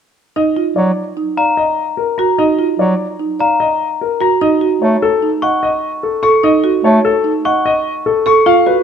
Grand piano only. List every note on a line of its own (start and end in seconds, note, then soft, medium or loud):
0.36 0.62 D#5 medium
0.76 1.03 D5 medium
1.37 1.64 F5 soft
1.57 1.84 D#5 medium
1.97 2.24 A#4 soft
2.18 2.45 A#5 medium
2.38 2.65 D#5 medium
2.79 3.06 D5 medium
3.40 3.67 F5 medium
3.60 3.87 D#5 medium
4.01 4.27 A#4 medium
4.21 4.48 A#5 medium
4.42 4.68 D#5 medium
4.82 5.08 C#5 medium
5.02 5.29 A4 medium
5.43 5.69 F#5 medium
5.63 5.89 D#5 medium
6.03 6.30 A4 medium
6.23 6.50 C#6 medium
6.44 6.70 D#5 medium
6.84 7.11 C#5 medium
7.05 7.31 A4 medium
7.45 7.72 F#5 medium
7.66 7.92 D#5 medium
8.06 8.33 A4 medium
8.27 8.53 C#6 medium
8.46 8.73 F5 medium
8.67 8.83 B4 medium